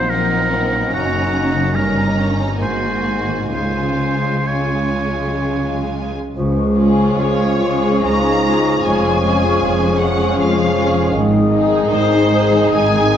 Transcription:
Already playing: A#1 A#2 F3 A#3 C4 C5
0.10 F#3 C4 D#4 A#4 F#5
0.31 A#3
0.51 F#3
0.72 A#3
0.91 F#1 F#2 C#4 D#4 F#4 A#5
1.11 C#3
1.32 A#3
1.53 C#3
1.74 G1 G2 C#4 D#4 A#4 A#5
1.95 G3
2.15 A#3
2.36 G3
2.59 G#1 G#2 A#3 F#4 C5 G#5
2.81 D#3
3.04 A#3
3.27 D#3
3.51 C#2 C#3 G#3 F4 C5 G#5
3.75 C#4
3.99 G#3
4.23 C#4
4.45 G#3 C4 F4 C#5 G#5
4.96 G#3
5.19 F#3
5.43 G#3
5.69 C#4
5.93 G#3
6.17 C#4
6.36 C#2 C#3 F3 G#3 F4 G#4 C#6
6.59 G#3
6.77 G#3 C#4 F4 G#4 C#5
6.99 F4
7.17 C#2 G#3 C#4 F4 C#5
7.39 F4
7.59 G#3 C#4 F4 G#4
7.84 C#4
8.03 C#2 G#3 D#4 A#5
8.44 G#3 C#4 F4 G#4
8.82 F1 F2 G#3 C#4 F4 G#4 G#5
9.04 G#3
9.23 G#3 C#4 F4 G#4 C#5
9.43 G#4
9.60 F1 F2 F3
9.80 G#4
9.99 G#3 C#4 F4 G#4 F#5
10.19 F3
10.35 F1 F2 G#3 C#4
10.41 F5
10.58 F3
10.75 G#3 C#4 F4 G#4
10.94 F3
11.11 G#1 G#2 D#3 G#3 D#4 G#4 D#6
11.32 G#3
11.52 G#3 D#4 G#4 D#5
11.71 G#4
11.88 G#1 G#2 D#3 G#3 D#4 C5
12.12 G#4
12.30 G#3 D#4 G#4
12.52 D#3
12.71 G#1 G#2 G#3 D#4 G#5
12.92 D#3
13.10 G#3 D#4 G#4

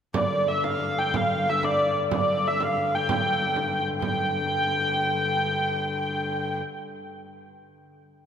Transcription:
0.14 G2 D3 D5, frame drum
0.31 frame drum
0.47 E5, frame drum
0.64 F5, frame drum
0.81 frame drum
0.99 G5
1.14 F5, frame drum
1.30 frame drum
1.46 E5, frame drum
1.63 D5, frame drum
1.79 frame drum
2.11 D5, frame drum
2.45 E5, frame drum
2.60 F5, frame drum
2.77 frame drum
2.95 G5
3.09 G5, frame drum
3.56 frame drum
3.71 frame drum
3.87 frame drum
4.02 G2 D3 G5, frame drum

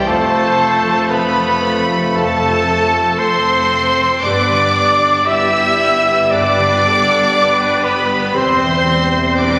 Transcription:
Already playing: C3 G3 C4 E4 C5 E5 G5
0.06 F1 F2 F3 A3 C4 F4 A4 C5 A5
0.33 C3
0.85 F4
1.08 B3 A4 B4 C5 B5
1.37 A5
1.63 F5
1.89 C5
2.14 F2 A3 C4 F4 A4 A5
2.40 C3
2.68 C4
2.93 F4
3.18 C4 C5 C6
3.46 A5
3.72 F5
3.98 C5
4.22 G1 G2 G3 B3 D4 G4 B4 D5 D6
4.50 D3
4.73 B3 D5
5.01 D4
5.26 E4 G4 B4 E5 E6
5.53 G5
5.79 D5
6.05 B4
6.28 G2 B3 D4 G4 D5 D6
6.32 B4
6.57 D3
6.83 B3 A4
7.08 D4
7.34 B4
7.59 G5
7.82 B3 B4 D5 B5
8.11 B4
8.34 E1 E2 G3 C4 G4 C5 C6
8.60 E3
8.86 C4
9.12 E4
9.36 D4 B4 C5 D5 D6

